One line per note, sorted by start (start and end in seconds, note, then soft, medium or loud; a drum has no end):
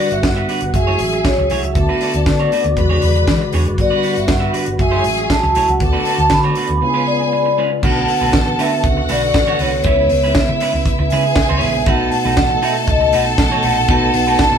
0.00 0.70 D3 medium
0.00 0.71 G3 medium
0.00 0.72 G3 medium
0.00 0.71 B3 medium
0.00 0.73 B3 medium
0.00 0.47 F#4 medium
0.00 0.72 F#4 medium
0.00 0.12 D5 medium
0.00 0.47 F#5 medium
0.00 0.72 F#5 medium
0.11 0.21 G1 medium
0.11 0.24 E5 medium
0.11 muted clean electric guitar stroke soft
0.11 closed hi-hat soft
0.23 0.44 G2 medium
0.23 0.76 F#5 medium
0.23 muted clean electric guitar stroke soft
0.23 kick loud
0.23 snare loud
0.23 closed hi-hat medium
0.36 0.47 D4 medium
0.36 0.47 F#4 soft
0.36 0.47 B4 medium
0.36 0.47 E5 medium
0.49 0.62 D4 medium
0.49 0.62 F#4 medium
0.49 0.61 B4 medium
0.49 0.61 D5 medium
0.49 open hi-hat medium
0.61 0.72 G1 medium
0.61 muted clean electric guitar stroke soft
0.61 closed hi-hat medium
0.73 0.94 F#1 medium
0.73 1.73 E3 medium
0.73 1.74 F#3 medium
0.73 1.73 G#3 medium
0.73 1.74 A3 medium
0.73 1.74 F#4 medium
0.73 1.48 G#4 medium
0.73 1.74 G#4 medium
0.73 1.74 E5 medium
0.73 1.27 E5 medium
0.73 1.48 G#5 medium
0.73 muted clean electric guitar stroke soft
0.73 kick loud
0.73 closed hi-hat medium
0.87 0.99 A3 medium
0.87 1.00 E4 medium
0.87 1.00 G#4 medium
0.87 1.00 C#5 medium
0.99 1.20 A1 medium
0.99 muted clean electric guitar stroke soft
0.99 open hi-hat medium
1.13 muted clean electric guitar stroke soft
1.13 closed hi-hat soft
1.25 1.57 C#5 medium
1.25 muted clean electric guitar stroke soft
1.25 kick loud
1.25 snare loud
1.25 closed hi-hat medium
1.38 1.48 C#2 medium
1.38 muted clean electric guitar stroke soft
1.50 1.63 C2 medium
1.50 1.64 A3 medium
1.50 1.63 E4 medium
1.50 1.63 G#4 medium
1.50 1.62 C#5 medium
1.50 open hi-hat medium
1.57 1.63 F#5 medium
1.63 1.73 C#2 medium
1.63 2.16 E5 medium
1.63 muted clean electric guitar stroke soft
1.63 closed hi-hat soft
1.74 1.86 D2 loud
1.74 2.74 D3 medium
1.74 2.75 A3 medium
1.74 2.76 B3 medium
1.74 2.75 B3 medium
1.74 3.76 F#4 medium
1.74 2.75 F#4 medium
1.74 2.49 A4 medium
1.74 2.75 D5 medium
1.74 2.49 A5 medium
1.74 muted clean electric guitar stroke soft
1.74 kick loud
1.74 closed hi-hat medium
1.89 2.00 A3 medium
1.89 2.00 D4 medium
1.89 2.01 F#4 medium
1.89 2.02 B4 medium
2.01 2.11 A3 medium
2.01 2.12 D4 medium
2.01 2.12 F#4 medium
2.01 2.12 B4 medium
2.01 open hi-hat medium
2.14 2.24 D2 medium
2.14 2.26 D5 medium
2.14 muted clean electric guitar stroke soft
2.14 closed hi-hat soft
2.26 2.47 D3 loud
2.26 3.50 D5 medium
2.26 muted clean electric guitar stroke soft
2.26 kick loud
2.26 snare loud
2.26 closed hi-hat medium
2.40 2.50 A3 soft
2.40 2.50 D4 medium
2.40 2.50 F#4 soft
2.40 2.50 C#5 medium
2.52 2.65 A3 loud
2.52 2.64 D4 medium
2.52 2.64 F#4 loud
2.52 2.63 B4 medium
2.52 open hi-hat medium
2.64 2.74 D2 medium
2.64 muted clean electric guitar stroke soft
2.64 closed hi-hat soft
2.75 2.97 E2 medium
2.75 3.76 C#3 medium
2.75 3.75 D3 medium
2.75 3.76 G#3 medium
2.75 3.77 G#3 medium
2.75 3.77 F#4 medium
2.75 3.77 B4 medium
2.75 3.51 B4 medium
2.75 3.77 D5 medium
2.75 3.51 B5 loud
2.75 muted clean electric guitar stroke soft
2.75 kick medium
2.75 closed hi-hat medium
2.90 3.02 D4 medium
2.90 3.03 F#4 medium
2.90 3.03 G#4 medium
2.90 3.03 C#5 medium
3.02 3.23 E2 loud
3.02 muted clean electric guitar stroke soft
3.02 open hi-hat medium
3.16 muted clean electric guitar stroke soft
3.16 closed hi-hat soft
3.27 3.38 E3 loud
3.27 muted clean electric guitar stroke soft
3.27 kick loud
3.27 snare loud
3.27 closed hi-hat medium
3.41 muted clean electric guitar stroke soft
3.52 3.63 E2 medium
3.52 3.67 D4 medium
3.52 3.65 F#4 medium
3.52 3.65 G#4 medium
3.52 3.65 C#5 medium
3.52 open hi-hat medium
3.65 3.76 F#1 medium
3.65 muted clean electric guitar stroke soft
3.65 closed hi-hat soft
3.77 3.88 G1 loud
3.77 4.77 D3 medium
3.77 4.77 G3 medium
3.77 4.79 G3 medium
3.77 4.78 B3 medium
3.77 4.78 F#4 medium
3.77 4.53 F#4 medium
3.77 4.78 F#4 medium
3.77 4.78 B4 medium
3.77 4.53 F#5 medium
3.77 muted clean electric guitar stroke soft
3.77 kick loud
3.77 closed hi-hat medium
3.81 4.18 D5 medium
3.91 4.02 D4 medium
3.91 4.03 F#4 medium
3.91 4.03 B4 medium
3.91 4.03 D5 medium
4.03 4.14 D4 medium
4.03 4.14 F#4 medium
4.03 4.14 B4 medium
4.03 4.14 D5 medium
4.03 open hi-hat medium
4.15 4.27 G1 medium
4.15 4.30 E5 medium
4.15 muted clean electric guitar stroke soft
4.15 closed hi-hat soft
4.28 4.49 G2 loud
4.28 4.82 F#5 medium
4.28 muted clean electric guitar stroke soft
4.28 kick loud
4.28 snare loud
4.28 closed hi-hat medium
4.40 4.52 D4 medium
4.40 4.52 F#4 medium
4.40 4.52 B4 medium
4.40 4.51 E5 medium
4.53 4.67 D4 medium
4.53 4.65 F#4 medium
4.53 4.65 B4 medium
4.53 4.65 D5 medium
4.53 open hi-hat medium
4.66 4.77 G1 medium
4.66 muted clean electric guitar stroke soft
4.66 closed hi-hat medium
4.78 5.00 F#1 loud
4.78 5.78 E3 medium
4.78 5.79 F#3 medium
4.78 5.78 G#3 medium
4.78 5.79 A3 medium
4.78 5.79 F#4 medium
4.78 5.54 G#4 medium
4.78 5.79 E5 medium
4.78 5.32 E5 medium
4.78 5.54 G#5 loud
4.78 muted clean electric guitar stroke medium
4.78 kick loud
4.78 closed hi-hat medium
4.91 5.04 A3 medium
4.91 5.04 E4 medium
4.91 5.04 G#4 medium
4.91 5.05 C#5 medium
5.04 5.26 A1 medium
5.04 muted clean electric guitar stroke soft
5.04 open hi-hat medium
5.18 muted clean electric guitar stroke soft
5.18 closed hi-hat soft
5.30 5.70 A5 medium
5.30 muted clean electric guitar stroke soft
5.30 kick loud
5.30 snare loud
5.30 closed hi-hat medium
5.43 5.53 C#2 medium
5.43 muted clean electric guitar stroke soft
5.55 5.66 C2 loud
5.55 5.69 A3 medium
5.55 5.68 E4 medium
5.55 5.68 G#4 medium
5.55 5.68 C#5 medium
5.55 open hi-hat medium
5.68 5.81 C#2 medium
5.68 6.21 F#5 medium
5.68 muted clean electric guitar stroke soft
5.68 closed hi-hat soft
5.79 5.91 D2 loud
5.79 6.79 D3 medium
5.79 6.79 A3 medium
5.79 6.80 B3 medium
5.79 7.81 B3 medium
5.79 5.87 F4 medium
5.79 6.81 F#4 medium
5.79 6.55 A4 medium
5.79 6.81 D5 medium
5.79 6.55 A5 medium
5.79 muted clean electric guitar stroke soft
5.79 kick loud
5.79 closed hi-hat medium
5.88 6.83 F#4 medium
5.93 6.05 A3 medium
5.93 6.05 D4 medium
5.93 6.06 F#4 medium
5.93 6.07 B4 medium
6.05 6.17 A3 medium
6.05 6.17 D4 medium
6.05 6.17 F#4 medium
6.05 6.17 B4 medium
6.05 open hi-hat medium
6.18 6.29 D2 loud
6.18 6.32 A5 loud
6.18 muted clean electric guitar stroke soft
6.18 closed hi-hat soft
6.30 6.52 D3 medium
6.30 7.54 B5 medium
6.30 muted clean electric guitar stroke soft
6.30 kick loud
6.30 snare loud
6.30 closed hi-hat medium
6.44 6.55 A3 medium
6.44 6.55 D4 medium
6.44 6.55 F#4 medium
6.44 6.54 C#5 medium
6.55 6.70 A3 loud
6.55 6.69 D4 medium
6.55 6.69 F#4 medium
6.55 6.68 B4 loud
6.55 open hi-hat medium
6.68 6.79 D2 medium
6.68 muted clean electric guitar stroke soft
6.68 closed hi-hat medium
6.81 7.80 C#3 medium
6.81 7.81 G#3 medium
6.81 7.81 B3 medium
6.81 7.82 C#4 medium
6.81 6.89 D4 medium
6.81 7.82 F4 medium
6.81 7.56 G#4 medium
6.81 7.57 G#5 medium
6.81 muted clean electric guitar stroke soft
6.90 7.85 F4 medium
6.90 7.07 B4 loud
6.95 7.06 G#3 medium
6.95 7.07 C#4 medium
6.95 7.07 F4 medium
7.07 7.79 D5 medium
7.07 muted clean electric guitar stroke soft
7.20 muted clean electric guitar stroke soft
7.33 muted clean electric guitar stroke soft
7.46 muted clean electric guitar stroke soft
7.58 7.71 G#3 medium
7.58 7.71 C#4 medium
7.58 7.71 F4 medium
7.58 7.70 B4 medium
7.72 muted clean electric guitar stroke medium
7.82 8.04 B1 loud
7.82 9.82 D3 medium
7.82 9.80 A3 medium
7.82 8.07 A3 medium
7.82 11.82 B3 medium
7.82 9.81 B3 medium
7.82 9.81 D4 medium
7.82 8.07 D4 medium
7.82 9.82 F#4 medium
7.82 8.07 F#4 medium
7.82 9.82 A4 medium
7.82 8.82 A4 medium
7.82 9.82 B4 medium
7.82 8.07 B4 medium
7.82 8.08 F#5 loud
7.82 8.82 A5 medium
7.82 kick loud
7.82 crash loud
8.08 8.61 F#5 medium
8.08 muted clean electric guitar stroke soft
8.08 open hi-hat medium
8.21 8.31 B1 loud
8.21 8.32 A3 soft
8.21 8.32 D4 soft
8.21 8.32 F#4 medium
8.21 8.32 B4 medium
8.33 8.54 A1 loud
8.33 kick loud
8.33 snare loud
8.33 closed hi-hat medium
8.46 muted clean electric guitar stroke soft
8.59 8.72 A3 medium
8.59 8.72 D4 loud
8.59 8.71 F#4 loud
8.59 8.71 B4 loud
8.59 9.11 E5 medium
8.59 open hi-hat medium
8.72 muted clean electric guitar stroke medium
8.84 9.04 C#2 medium
8.84 9.83 F#4 medium
8.84 9.83 F#5 medium
8.84 kick loud
8.84 closed hi-hat medium
8.97 muted clean electric guitar stroke soft
9.09 9.30 B1 medium
9.09 9.23 A3 medium
9.09 9.22 D4 medium
9.09 9.22 F#4 medium
9.09 9.21 B4 loud
9.09 9.57 D5 medium
9.09 open hi-hat medium
9.23 muted clean electric guitar stroke soft
9.34 9.55 A1 medium
9.34 muted clean electric guitar stroke medium
9.34 kick loud
9.34 snare loud
9.34 closed hi-hat medium
9.47 9.59 A3 medium
9.47 9.59 D4 medium
9.47 9.60 F#4 medium
9.47 9.61 C#5 medium
9.59 9.80 C2 loud
9.59 9.71 A3 medium
9.59 9.71 D4 medium
9.59 9.71 F#4 medium
9.59 9.71 B4 medium
9.59 9.85 C#5 medium
9.59 open hi-hat medium
9.83 10.05 C#2 loud
9.83 11.85 C#3 medium
9.83 11.57 G#3 medium
9.83 10.09 G#3 medium
9.83 11.58 B3 medium
9.83 11.58 C#4 medium
9.83 10.09 C#4 medium
9.83 11.85 E4 medium
9.83 11.58 E4 medium
9.83 11.09 E4 medium
9.83 10.09 E4 loud
9.83 11.59 B4 medium
9.83 10.09 B4 loud
9.83 10.38 C#5 medium
9.83 11.09 E5 medium
9.83 kick loud
9.83 closed hi-hat medium
10.09 10.31 C#2 loud
10.09 muted clean electric guitar stroke soft
10.09 open hi-hat medium
10.24 10.34 G#3 medium
10.24 10.34 C#4 medium
10.24 10.34 E4 medium
10.24 10.34 B4 medium
10.35 11.11 E5 loud
10.35 muted fingered electric bass stroke medium
10.35 kick loud
10.35 snare loud
10.35 closed hi-hat medium
10.48 10.58 C#3 loud
10.48 muted clean electric guitar stroke medium
10.60 10.74 G#3 medium
10.60 10.74 C#4 medium
10.60 10.73 E4 medium
10.60 10.73 B4 medium
10.60 open hi-hat medium
10.74 10.84 C#2 medium
10.74 muted clean electric guitar stroke soft
10.86 kick loud
10.86 closed hi-hat medium
10.99 11.09 C#2 loud
10.99 muted clean electric guitar stroke medium
11.10 11.32 C#3 loud
11.10 11.25 G#3 medium
11.10 11.24 C#4 medium
11.10 11.24 E4 medium
11.10 11.85 G#4 medium
11.10 11.24 B4 loud
11.10 11.90 E5 loud
11.10 11.85 G#5 medium
11.10 open hi-hat medium
11.25 muted clean electric guitar stroke soft
11.36 muted clean electric guitar stroke soft
11.36 kick loud
11.36 snare loud
11.36 closed hi-hat medium
11.49 11.59 C#2 medium
11.49 11.61 G#3 medium
11.49 11.61 C#4 medium
11.49 11.62 E4 medium
11.49 11.63 C#5 loud
11.61 11.75 A1 loud
11.61 11.87 G#3 medium
11.61 11.72 G#3 medium
11.61 11.85 B3 soft
11.61 11.87 C#4 soft
11.61 11.73 C#4 medium
11.61 11.87 E4 soft
11.61 11.73 E4 medium
11.61 11.87 B4 medium
11.61 11.73 B4 medium
11.61 open hi-hat medium
11.75 11.85 A#1 loud
11.75 muted clean electric guitar stroke soft
11.86 12.07 B1 loud
11.86 14.58 B2 medium
11.86 13.84 A3 medium
11.86 12.10 A3 medium
11.86 13.87 A3 medium
11.86 13.85 B3 medium
11.86 12.10 D#4 medium
11.86 14.58 D#4 medium
11.86 13.85 D#4 medium
11.86 12.10 F#4 medium
11.86 13.85 F#4 medium
11.86 14.58 A4 medium
11.86 11.94 A#4 medium
11.86 12.10 B4 loud
11.86 12.13 F#5 loud
11.86 14.58 A5 loud
11.86 kick loud
11.86 closed hi-hat medium
11.95 13.89 B4 medium
12.12 12.57 F#5 loud
12.12 muted clean electric guitar stroke medium
12.12 open hi-hat medium
12.25 12.38 B1 loud
12.25 12.36 A3 soft
12.25 12.36 D#4 medium
12.25 12.36 F#4 medium
12.25 12.35 B4 medium
12.37 12.58 A1 loud
12.37 kick loud
12.37 snare loud
12.37 closed hi-hat medium
12.50 muted clean electric guitar stroke soft
12.58 12.63 F#5 medium
12.62 12.76 A3 medium
12.62 12.75 D#4 medium
12.62 12.75 F#4 loud
12.62 12.74 B4 medium
12.62 12.87 E5 medium
12.62 open hi-hat medium
12.75 muted clean electric guitar stroke soft
12.88 13.13 C#2 loud
12.88 13.15 D#5 loud
12.88 kick medium
12.88 closed hi-hat medium
13.00 muted clean electric guitar stroke soft
13.13 13.34 B1 medium
13.13 13.27 A3 medium
13.13 13.26 D#4 medium
13.13 13.26 F#4 loud
13.13 13.25 B4 loud
13.13 13.64 F#5 loud
13.13 open hi-hat medium
13.26 muted clean electric guitar stroke soft
13.38 13.59 A1 medium
13.38 muted clean electric guitar stroke soft
13.38 kick loud
13.38 snare loud
13.38 closed hi-hat medium
13.52 13.63 A3 medium
13.52 13.64 D#4 medium
13.52 13.64 F#4 medium
13.52 13.65 C#5 medium
13.63 13.84 A#1 medium
13.63 13.74 A3 medium
13.63 13.75 D#4 medium
13.63 13.75 F#4 medium
13.63 13.75 B4 medium
13.63 13.90 F#5 loud
13.63 open hi-hat medium
13.77 muted clean electric guitar stroke medium
13.87 14.09 B1 loud
13.87 14.58 A3 medium
13.87 14.12 A3 medium
13.87 14.58 B3 medium
13.87 14.58 D#4 medium
13.87 14.13 D#4 medium
13.87 14.58 F#4 medium
13.87 14.13 F#4 medium
13.87 14.58 B4 medium
13.87 14.42 F#5 loud
13.87 kick loud
13.87 closed hi-hat medium
13.91 14.13 B4 medium
14.14 14.34 B1 loud
14.14 muted clean electric guitar stroke soft
14.14 open hi-hat medium
14.27 14.38 A3 medium
14.27 14.38 D#4 medium
14.27 14.38 F#4 medium
14.27 14.37 B4 medium
14.39 14.58 A5 loud
14.39 muted fingered electric bass stroke soft
14.39 kick loud
14.39 snare loud
14.39 closed hi-hat medium
14.52 14.58 B2 loud
14.52 muted clean electric guitar stroke soft